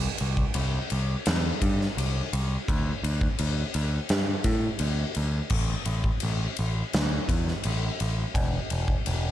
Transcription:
0.18 C2, ride
0.37 kick
0.54 C2, ride
0.90 C2, ride
1.26 E2, snare, ride
1.62 G2, kick, ride
1.81 snare
1.97 C2, ride
2.33 C2, ride
2.68 D2, kick, ride
3.03 D2, ride
3.21 kick
3.39 D2, ride
3.74 D2, ride
4.09 G2, snare, ride
4.44 A2, kick, ride
4.79 D2, ride
5.15 D2, ride
5.50 A1, kick, crash
5.85 A1, ride
6.04 kick
6.20 A1, ride
6.57 A1, ride
6.93 D2, snare, ride
7.28 E2, kick, ride
7.48 snare
7.64 A1, ride
8.00 A1, ride
8.34 E1, kick, ride
8.70 E1, ride
8.88 kick
9.06 E1, ride

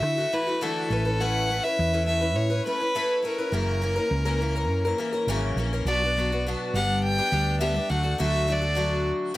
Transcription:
Already playing: A3 E4 F#4 E5
0.03 D3
0.18 A3 E4 F#4
0.32 E3 A3 E4 F#4 B4
0.47 A3 E4 F#4
0.61 D3 E3 A3 E4 F#4 A4
0.90 A1 A3 C#4 E4 B4
1.05 C#4 E4 B4
1.20 A3 C#4 E4 B4 F#5
1.50 A3 C#4 E4 B4
1.63 C#4 E4 B4 E5
1.79 E2
1.93 A3 C#4 E4 B4
2.06 A3 C#4 E4 B4 E5
2.21 C#4 E4 B4
2.36 A2 C#5
2.50 C#4 E4 B4
2.66 A3 C#4 E4 B4
2.80 C#4 E4 B4
2.95 A3 C#4 E4 B4
3.23 A3 C#4 E4 A#4 B4
3.38 C#4 E4 B4
3.52 F#1 F#2 C#3 E3 A#3 C#4 A#4
3.81 E3 A#3 C#4 A#4
3.96 E3 A#3 C#4 A#4
4.11 C#2
4.25 F#2 C#3 E3 A#3 C#4 A#4
4.41 E3 A#3 C#4 A#4
4.56 E3 A#3 C#4 A#4
4.69 F#2
4.85 E3 A#3 C#4 A#4
4.98 E3 A#3 C#4 A#4
5.13 E3 A#3 C#4 A#4
5.27 G#1 F#2 C#3 E3 A#3 C#4 A#4
5.56 A#1 E3 A#3 C#4 A#4
5.73 E3 A#3 C#4 A#4
5.85 B1 B2 F#3 B3 D4 F#4 D5
6.03 B3 D4 F#4
6.17 F#3 B3 D4 F#4
6.32 B3 D4 F#4
6.47 B2 F#3 B3 D4 F#4
6.74 G1 G2 D3 G3 B3 D4 G4 F#5
7.04 G5
7.18 G3 B3 D4 G4
7.32 D2 G3 B3 D4 G4
7.60 G2 D3 G3 B3 D4 G4 E5
7.74 G3 B3 D4 G4
7.89 D2 F#3 A3 D4 F#4 F#5
8.03 A3 D4 F#4
8.18 D2 D3 F#3 A3 D4 F#4 E5
8.48 F#3 A3 D4 F#4
8.52 D5
8.62 A3 D4 F#4
8.75 D3 F#3 A3 D4 F#4

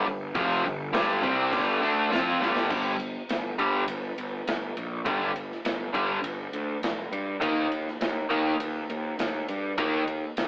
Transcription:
0.06 G1 G2 D3
0.35 F1 F2 C3 F3, kick, open hi-hat
0.64 G1 G2 D3
0.93 G1 G2 D3 G3, snare, open hi-hat
1.23 C2 C3 G3 C4, kick
1.52 G1 G2 D3 G3, kick, open hi-hat
1.81 D2 D3 A3 D4
2.11 F2 F3 C4 F4, snare, open hi-hat
2.40 G1 G2 D3 G3, snare
2.57 snare
2.70 G1 G2 D3 G3, kick, crash
3.00 ride
3.29 G1, snare, ride
3.59 G1 G2 D3 G3, ride
3.88 G1, ride
4.18 G1, ride
4.47 G1, snare, ride
4.77 A#1, ride
5.06 G1 G2 D3 G3, kick, ride
5.36 ride
5.52 snare
5.65 G1, snare, ride
5.94 G1 G2 D3 G3, ride
6.24 G1, ride
6.52 D2, ride
6.82 F1, snare, ride
7.12 G2, ride
7.41 D#2 D#3 A#3 D#4, kick, ride
7.72 ride
7.88 snare
8.01 D#2, snare, ride
8.30 D#2 D#3 A#3 D#4, ride
8.59 D#2, ride
8.90 D#2, ride
9.19 D#2, snare, ride
9.48 G2, ride
9.78 D#2 D#3 A#3 D#4, kick, ride
10.08 ride
10.37 D#2, snare, ride

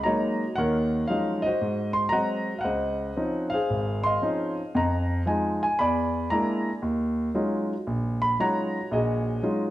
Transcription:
0.03 F#3 G#3 A#3 D#4 C#5 D#5 A#5
0.55 D#2 D#3 A#4 C#5 F#5
1.07 F3 F#3 G#3 C#4 D#4 F5
1.42 F#4 C5 D#5
1.61 G#2
1.93 C6
2.09 F#3 G#3 D#5 F#5 A#5
2.13 C4
2.58 F5 F#5
2.64 C#2 C5 D#5
3.17 F3 C4 C#4 D#4
3.50 F5
3.54 G#4 C5
3.70 G#1
4.04 D#5 F5 C6
4.22 F3 C4 C#4 D#4
4.75 F2 D#5 A#5
5.26 F3 G#3 D#4 G#5
5.63 G#5
5.79 E2 D5 G#5 B5
6.30 G#3 A#3 D4 E4 D5 A#5
6.82 D#2
7.34 F#3 G#3 C#4 D#4 F4
7.87 A#1
8.22 B5
8.39 F#3 G#3 C#4 D#4 F4 C#5 F#5 A#5
8.91 A#1 F#4 G#4 D#5
9.43 F#3 G#3 C#4 D#4 F4

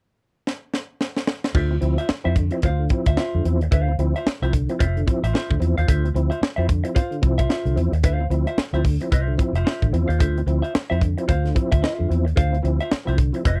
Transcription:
0.47 snare
0.74 snare
1.01 snare
1.16 snare
1.27 snare
1.44 snare
1.54 D2 D3 F4 C5 E5, kick, crash
1.71 C4 E4
1.81 D2 F3 C4 E4, muted clean electric guitar stroke, closed hi-hat
1.98 F4 C5 E5, closed hi-hat
2.09 muted clean electric guitar stroke, muted fingered electric bass stroke, snare
2.24 F2 F3 C4 E4 F4 C5 E5
2.35 D3, muted clean electric guitar stroke, kick, closed hi-hat
2.51 F3 C4 E4, muted clean electric guitar stroke, closed hi-hat
2.62 D2 C4 E4 F4 C5 F5, kick, closed hi-hat
2.79 D3
2.89 F3 C4 E4, muted clean electric guitar stroke, kick, closed hi-hat
3.06 D2 F4 C5 E5, kick, closed hi-hat
3.17 C4 E4 F4 C5 E5, snare
3.35 F2 D3
3.45 E2 F3 C4 E4, muted clean electric guitar stroke, closed hi-hat
3.61 D#2, muted clean electric guitar stroke, closed hi-hat
3.71 D2 D3 F4 C5 F5, kick, closed hi-hat
3.89 C4 E4
3.99 D2 F3 C4 E4, muted clean electric guitar stroke, closed hi-hat
4.16 F4 C5 E5, closed hi-hat
4.26 muted fingered electric bass stroke, muted clean electric guitar stroke, snare
4.42 C2 F3 C4 E4 F4 C5 E5, closed hi-hat
4.53 D3, muted clean electric guitar stroke, kick, closed hi-hat
4.69 F3 C4 E4, muted clean electric guitar stroke, closed hi-hat
4.79 F1 C4 E4 F4 C5 E5, kick, closed hi-hat
4.97 D3, closed hi-hat
5.06 F3 C4 E4, muted clean electric guitar stroke, kick, closed hi-hat
5.23 A1 F4 C5 E5, closed hi-hat
5.33 C4 E4 F4 C5 E5, snare
5.50 D2 D3, kick
5.60 E2 F3 C4 E4, muted clean electric guitar stroke, closed hi-hat
5.78 D#2 F4 C5 F5, closed hi-hat
5.87 D2 D3 F4 C5 E5, kick, closed hi-hat
6.05 C4 E4, closed hi-hat
6.14 D2 F3 C4 E4, muted clean electric guitar stroke, closed hi-hat
6.30 F4 C5 E5, closed hi-hat
6.41 muted clean electric guitar stroke, muted fingered electric bass stroke, snare
6.56 F2 F3 C4 E4 F4 C5 E5
6.67 D3, muted clean electric guitar stroke, kick, closed hi-hat
6.84 F3 C4 E4, muted clean electric guitar stroke, closed hi-hat
6.95 C4 E4 F4 C5 F5, kick, closed hi-hat
7.11 D3, closed hi-hat
7.22 C2 F3 C4 E4, muted clean electric guitar stroke, kick, closed hi-hat
7.38 F4 C5 E5, kick, closed hi-hat
7.49 C4 E4 F4 C5 E5, snare
7.65 C2 D3, closed hi-hat
7.76 E2 F3 C4 E4, muted clean electric guitar stroke, closed hi-hat
7.92 D#2, muted clean electric guitar stroke, closed hi-hat
8.03 D2 D3 F4 C5 F5, kick, closed hi-hat
8.21 C4 E4
8.30 D2 F3 C4 E4, muted clean electric guitar stroke, closed hi-hat
8.47 F4 C5 E5, closed hi-hat
8.58 muted fingered electric bass stroke, snare
8.73 D2 F3 C4 E4 F4 C5 E5, closed hi-hat
8.85 D3, muted clean electric guitar stroke, kick, open hi-hat
9.01 F3 C4 E4, muted clean electric guitar stroke, closed hi-hat
9.11 C2 C4 E4 F4 C5 E5, kick, closed hi-hat
9.28 D3
9.37 F3 C4 E4, muted clean electric guitar stroke, kick, closed hi-hat
9.53 F1 C5 E5, closed hi-hat
9.57 F4
9.65 C4 E4 F4 C5 E5, snare
9.82 A1 D3, kick, closed hi-hat
9.92 E2 F3 C4 E4, muted clean electric guitar stroke, closed hi-hat
10.08 D#2 F4 C5 F5, closed hi-hat
10.19 D2 D3 F4 C5 E5, kick, closed hi-hat
10.38 C4 E4, closed hi-hat
10.46 D2 F3 C4 E4, muted clean electric guitar stroke, closed hi-hat
10.62 F4 C5 E5, closed hi-hat
10.75 muted fingered electric bass stroke, snare
10.90 F2 F3 C4 E4 F4 C5 E5, closed hi-hat
11.01 D3, muted clean electric guitar stroke, kick, closed hi-hat
11.18 F3 C4 E4, muted clean electric guitar stroke, closed hi-hat
11.28 D2 C4 E4 F4 C5 F5, kick, closed hi-hat
11.44 D3, snare, closed hi-hat
11.55 F3 C4 E4, muted clean electric guitar stroke, kick, closed hi-hat
11.72 D2 F4 C5 E5, kick, closed hi-hat
11.82 C4 E4 B4 E5, snare
11.93 F4 C5
11.99 F2 D3
12.09 E2 F3 C4 E4, muted clean electric guitar stroke, closed hi-hat
12.25 D#2, muted clean electric guitar stroke, closed hi-hat
12.36 D2 D3 F4 C5 F5, kick, closed hi-hat
12.52 C4 E4, closed hi-hat
12.62 D2 F3 C4 E4, muted clean electric guitar stroke, closed hi-hat
12.80 F4 C5 E5, closed hi-hat
12.91 muted clean electric guitar stroke, muted fingered electric bass stroke, snare
13.05 C2 F3 C4 E4 C5 E5, closed hi-hat
13.10 F4
13.16 D3, muted clean electric guitar stroke, kick, closed hi-hat
13.33 F3 C4 E4, muted clean electric guitar stroke, closed hi-hat
13.45 F1 C4 E4 F4 C5 E5, kick, closed hi-hat

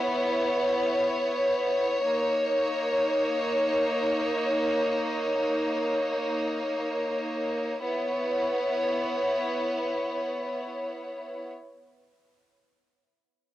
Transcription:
Already playing: B3 E4 C#5
2.04 A#3 D#4
7.82 B3 E4 C#5

